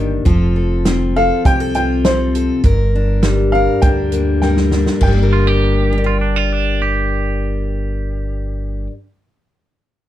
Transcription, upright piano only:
1.16 F5
1.46 G5
1.75 G5
2.05 C5
3.52 F5
3.82 G5
4.42 G5
5.03 G5

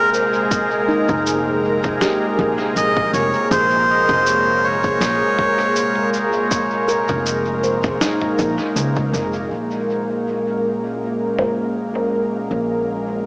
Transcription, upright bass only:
1.09 F1
2.39 A#1
2.76 A#1
3.13 F1
3.51 A#1
4.09 F1
5.01 A#1
7.09 F1
8.39 A#1
8.76 C#2
9.13 F1
9.51 A#1
12.51 A#1

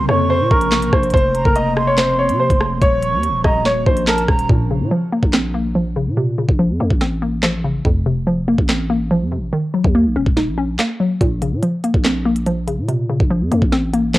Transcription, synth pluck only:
4.50 A#2
4.71 C#3
4.91 F3
5.12 A#3
5.33 C4
5.54 A#3
5.75 F3
5.96 C#3
6.17 C3
6.38 C#3
6.59 F3
6.80 A#3
7.01 C4
7.22 A#3
7.43 F3
7.64 C#3
7.85 F2
8.06 C3
8.27 F3
8.48 A#3
8.69 C4
8.90 A#3
9.11 F3
9.32 C3
9.53 D#3
9.74 F#3
9.95 A#3
10.16 C#4
10.37 D#4
10.58 C#4
10.79 A#3
11.00 F#3
11.21 A#2
11.42 C#3
11.63 F3
11.84 A#3
12.05 C4
12.25 A#3
12.47 F3
12.67 C#3
12.88 C3
13.10 C#3
13.30 F3
13.52 A#3
13.72 C4
13.93 A#3
14.14 F3

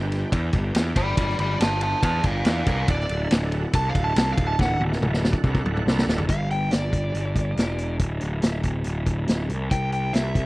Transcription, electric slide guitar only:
0.97 D5 B5
1.18 D5 B5
1.40 D5 B5
1.61 F5 A5
1.83 F5 A5
2.03 F5 A5
2.26 D5 F5
2.47 D5 F5
2.68 D5 F5
2.91 D5
3.75 A5
3.89 F5
4.04 A5
4.18 A5
4.32 F5
4.47 A5
4.61 F#5
6.30 F5
6.51 G5
6.72 D5
9.71 G5
9.93 G5
10.13 E5

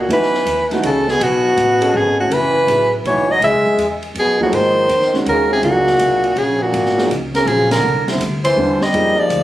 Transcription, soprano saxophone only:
0.00 F#4
0.13 B4
0.86 A4
1.10 G#4
1.23 F#4
1.96 G#4
2.20 F#4
2.34 B4
3.07 C#5
3.31 D#5
3.44 E5
4.19 G#4
4.43 F#4
4.55 C5
5.29 A#4
5.53 G#4
5.64 F#4
6.38 G#4
6.62 F#4
7.35 A#4
7.48 G#4
7.72 A#4
8.45 C5
8.83 D#5
9.19 D5

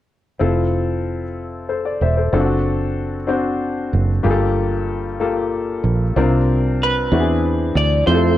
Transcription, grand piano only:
0.39 C4 E4 F4 A4
1.69 A4 C5
1.85 D5
2.02 C5 E5
2.17 A4 C5
2.33 C4 D4 F4 A4
2.40 F#4
3.27 C4 D4 F#4 C5
4.23 G2 A#3 F4 G4 G#4
4.31 A4
5.20 A#3 F4 G4 A4
6.16 C3 C4 D4 F4 A#4
7.12 E3 C4 D4 E4 F#4
7.19 G#4
8.07 C4 E4 F4 G4
8.15 A4

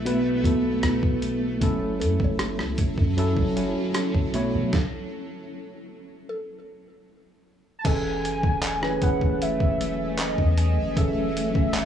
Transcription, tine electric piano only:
Already playing: B2 B3 E4 A4
0.05 B2 B3 E4 B4
0.44 B2 B3 E4 A4
1.61 F#3 C#4 E4 A4
3.17 F#3 C#4 E4 A4
3.56 F#3 C#4 E4 F#4
4.34 B2 A3 E4 C#5
7.84 E3 C#4 G#4 A4
8.82 E3 C#4 G#4 B4
9.01 E3 C#4 G#4 B4
10.96 E3 C#4 G#4 A4

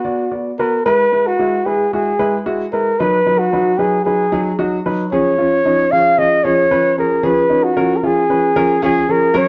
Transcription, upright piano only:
0.05 B3 F#4 D5
0.31 B3 F#4 D5
0.59 B3 F#4 B4
0.86 G#3 E4 B4
1.12 G#3 E4 B4
1.39 G#3 E4 F#4
1.66 G#3 E4 B4
1.93 G#3 E4 F#4
2.19 G#3 E4 B4
2.46 G#3 E4 F#4
2.73 G#3 E4 B4
3.00 F#3 D#4 B4
3.26 F#3 D#4 B4
3.53 F#3 D#4 B4
3.79 F#3 D#4 B4
4.06 F#3 D#4 B4
4.32 F#3 D#4 G#4
4.59 F#3 D#4 F#4
4.86 F#3 D#4 B4
5.12 F3 C#4 G#4
5.38 F3 C#4 F4
5.65 F3 C#4 D#4
5.92 F3 C#4 G#4
6.18 F3 C#4 G#4
6.45 F3 C#4 G#4
6.71 F3 C#4 B4
6.98 F3 C#4 G#4
7.23 F3 C#4 G#4
7.50 F3 C#4 D#4
7.77 F3 C#4 A#4
8.03 F3 C#4 F4
8.30 F3 C#4 B4
8.56 F3 C#4 A#4
8.82 F3 C#4 G#4 F5
9.09 F3 C#4 G#4
9.34 F#3 C#4 A#4

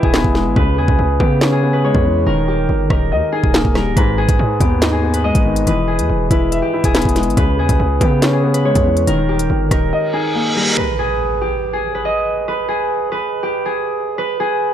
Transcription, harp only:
Already playing: B4 D#5
0.04 G#4
0.56 B4
0.78 G#4
1.20 G4
1.52 G#4
1.73 B4
1.84 C#5
2.26 A#4
2.48 G4
2.90 A#4
3.32 G#4
3.75 A#4
3.96 B4
4.18 G#4
4.60 G4
4.92 G#4
5.14 B4
5.24 D#5
5.67 B4
5.88 G#4
6.31 B4
6.62 G4
6.85 G#4
7.37 B4
7.59 G#4
8.01 G4
8.33 G#4
8.54 B4
8.65 C#5
9.07 A#4
9.29 G4
9.71 A#4
10.13 G#4
10.56 A#4
10.77 B4
10.99 G#4
11.41 G4
11.73 G#4
11.95 B4
12.05 D#5
12.48 B4
12.68 G#4
13.12 B4
13.43 G4
13.65 G#4
14.18 B4
14.40 G#4

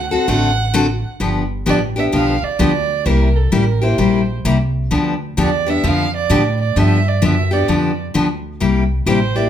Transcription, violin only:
Already playing: F#5
0.12 F#5
1.69 D5
1.99 E5
2.15 F5
2.44 D5
3.08 A#4
3.36 A4
3.54 A#4
3.83 C5
5.40 D5
5.70 E5
5.87 F5
6.17 D5
6.62 D5
6.78 E5
7.09 D5
7.24 E5
7.53 D5
9.08 C5
9.36 D5

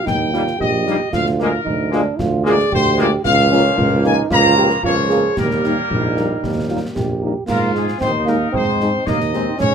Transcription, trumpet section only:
0.06 G5
0.61 D#5
1.14 F5
1.41 A#4
2.46 D5
2.73 C5
2.99 D5
3.25 F5
4.06 G#5
4.32 A#5
4.84 C#5
5.38 A#4
7.50 A#4
7.76 G#4
8.01 C5
8.28 A#4
8.54 C5
9.06 D#5
9.60 C#5

